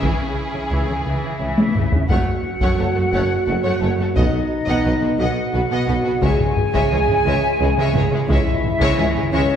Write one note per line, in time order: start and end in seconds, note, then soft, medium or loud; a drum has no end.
0.00 0.10 C#2 medium
0.00 0.10 C#3 medium
0.00 0.18 E3 soft
0.00 0.94 C#4 medium
0.00 1.85 E4 medium
0.00 1.85 G#4 medium
0.00 1.74 G#4 medium
0.00 taiko medium
0.19 0.26 C#3 soft
0.19 0.27 C#3 soft
0.54 0.61 C#3 soft
0.71 0.78 C#2 medium
0.71 0.79 C#3 soft
0.71 0.87 E3 medium
0.75 0.86 E3 soft
0.75 0.86 G#4 soft
0.88 0.95 C#3 soft
0.88 0.96 C#3 soft
1.05 1.12 C#2 soft
1.05 1.13 C#3 soft
1.05 1.38 E3 soft
1.05 2.05 E4 medium
1.05 2.05 E5 medium
1.23 1.30 C#3 soft
1.40 1.47 C#2 soft
1.40 1.47 C#3 soft
1.40 1.74 E3 soft
1.58 1.66 C#3 soft
1.58 taiko high medium
1.74 1.82 C#2 soft
1.74 2.09 C#3 soft
1.74 1.82 C#3 soft
1.74 1.87 E3 soft
1.74 1.87 G#4 soft
1.74 taiko low-mid medium
1.92 2.00 C#3 soft
1.92 taiko low medium
2.09 2.16 F#1 medium
2.09 2.17 F#1 medium
2.09 2.17 F#2 medium
2.09 2.25 A3 medium
2.09 4.16 F#4 medium
2.09 2.26 C#5 medium
2.09 2.25 F#5 soft
2.09 4.16 F#5 medium
2.09 taiko medium
2.61 2.69 F#2 medium
2.61 2.77 A3 soft
2.61 2.78 C#5 medium
2.61 2.77 F#5 medium
2.61 taiko medium
2.78 2.85 F#1 soft
2.78 2.86 F#1 soft
2.78 2.86 F#2 soft
2.78 2.85 A3 soft
2.78 2.87 A4 soft
2.78 2.85 C#5 soft
2.95 3.03 F#2 soft
2.95 3.02 A3 soft
2.95 3.04 F#4 soft
2.95 3.02 A4 soft
3.13 3.20 F#1 medium
3.13 3.19 F#2 medium
3.13 3.29 A3 medium
3.13 3.29 C#5 medium
3.13 3.29 F#5 medium
3.47 3.54 F#1 soft
3.47 3.55 F#1 soft
3.47 3.54 F#2 soft
3.47 3.54 A3 soft
3.47 3.54 F#4 soft
3.47 3.54 A4 soft
3.63 3.71 F#2 medium
3.63 3.80 A3 medium
3.63 3.80 C#5 medium
3.63 3.81 F#5 medium
3.80 3.89 F#1 soft
3.80 3.89 F#2 soft
3.80 3.89 A3 soft
3.80 3.88 A4 soft
3.80 3.89 C#5 soft
3.99 4.06 F#2 soft
3.99 4.06 A3 soft
3.99 4.07 F#4 medium
3.99 4.07 A4 soft
4.15 4.23 B1 medium
4.15 4.24 B1 medium
4.15 4.24 B2 medium
4.15 4.33 B3 medium
4.15 5.18 D#4 medium
4.15 4.32 D#5 soft
4.15 5.20 D#5 medium
4.15 4.33 F#5 medium
4.15 taiko medium
4.66 4.75 B2 medium
4.66 4.84 B3 medium
4.66 4.83 D#5 medium
4.66 4.84 F#5 medium
4.66 taiko medium
4.85 4.92 B1 soft
4.85 4.92 B2 soft
4.85 4.92 B3 soft
4.85 4.92 B4 soft
4.85 4.93 D#5 soft
5.01 5.09 B2 soft
5.01 5.08 B3 soft
5.01 5.09 F#4 soft
5.01 5.10 B4 soft
5.19 5.26 B1 medium
5.19 5.26 B2 medium
5.19 5.36 B3 medium
5.19 6.24 F#4 medium
5.19 5.36 D#5 medium
5.19 5.35 F#5 medium
5.19 6.21 F#5 medium
5.54 5.61 B1 soft
5.54 5.61 B2 soft
5.54 5.61 B3 soft
5.54 5.61 F#4 medium
5.54 5.61 B4 soft
5.70 5.78 B2 medium
5.70 5.87 B3 medium
5.70 5.87 D#5 medium
5.70 5.87 F#5 medium
5.88 5.95 B1 soft
5.88 5.95 B2 soft
5.88 5.95 B3 soft
5.88 5.95 B4 soft
5.88 5.95 D#5 soft
6.04 6.13 B2 soft
6.04 6.12 B3 medium
6.04 6.12 F#4 medium
6.04 6.12 B4 medium
6.21 6.29 C#2 medium
6.21 7.22 C#3 medium
6.21 6.29 C#3 medium
6.21 6.38 G#3 medium
6.21 8.12 G#4 medium
6.21 6.39 C#5 medium
6.21 6.39 E5 medium
6.21 8.02 G#5 medium
6.21 taiko medium
6.39 taiko low-mid soft
6.57 taiko low-mid medium
6.73 6.81 C#3 medium
6.73 6.90 G#3 medium
6.73 6.91 C#5 medium
6.73 6.90 E5 medium
6.73 taiko medium
6.91 6.98 C#2 medium
6.91 6.99 C#2 soft
6.91 6.98 C#3 soft
6.91 6.98 G#3 medium
6.91 7.01 G#4 soft
6.91 6.98 C#5 medium
7.08 7.16 C#3 medium
7.08 7.15 G#3 soft
7.08 7.16 G#4 medium
7.08 taiko low-mid soft
7.12 7.18 E4 medium
7.25 7.33 C#2 medium
7.25 7.33 C#3 medium
7.25 7.42 G#3 medium
7.25 7.43 C#5 medium
7.25 7.42 E5 medium
7.60 7.67 C#2 medium
7.60 7.67 C#3 soft
7.60 7.67 G#3 medium
7.60 7.69 E4 medium
7.60 7.69 G#4 medium
7.77 7.84 C#3 medium
7.77 7.94 G#3 medium
7.77 7.95 C#5 medium
7.77 7.95 E5 medium
7.94 8.02 C#2 soft
7.94 8.03 C#2 medium
7.94 8.01 C#3 medium
7.94 8.02 G#3 soft
7.94 8.03 C#5 medium
7.94 taiko low-mid soft
7.99 8.05 G#4 medium
8.11 8.18 C#3 medium
8.11 8.20 G#3 medium
8.11 8.21 E4 medium
8.11 8.21 G#4 medium
8.28 8.36 C#2 medium
8.28 8.37 C#2 medium
8.28 8.35 C#3 medium
8.28 8.46 G#3 medium
8.28 9.31 E4 medium
8.28 8.46 C#5 medium
8.28 9.31 E5 medium
8.28 8.47 E5 medium
8.28 taiko medium
8.47 taiko low-mid soft
8.64 taiko low-mid medium
8.80 8.87 C#3 medium
8.80 8.97 G#3 medium
8.80 8.98 C#5 medium
8.80 8.98 E5 medium
8.80 taiko medium
8.98 9.06 C#2 medium
8.98 9.05 C#3 soft
8.98 9.05 G#3 medium
8.98 9.05 G#4 medium
8.98 9.06 C#5 medium
9.15 9.22 C#3 medium
9.15 9.23 G#3 medium
9.15 9.23 E4 medium
9.15 9.25 G#4 medium
9.15 taiko low-mid soft
9.32 9.39 C#2 medium
9.32 9.42 C#2 medium
9.32 9.40 C#3 medium
9.32 9.49 G#3 medium
9.32 9.56 C#4 medium
9.32 9.49 C#5 medium
9.32 9.56 C#5 medium
9.32 9.50 E5 medium